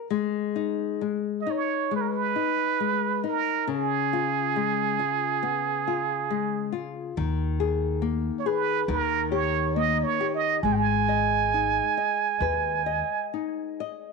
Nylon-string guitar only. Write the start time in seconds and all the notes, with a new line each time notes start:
0.10 G#3
0.56 D#4
1.01 G#3
1.47 D#4
1.91 G#3
2.36 D#4
2.80 G#3
3.24 D#4
3.67 C#3
4.13 F4
4.56 G#3
4.99 F4
5.43 B3
5.88 F4
6.30 G#3
6.72 F4
7.17 D#3
7.60 G#4
8.02 A#3
8.46 G#4
8.88 D#3
9.32 G4
9.76 A#3
10.21 G4
10.65 G#3
11.09 D#5
11.54 D#4
11.97 D#5
12.42 B4
12.86 D#5
13.34 D#4
13.80 D#5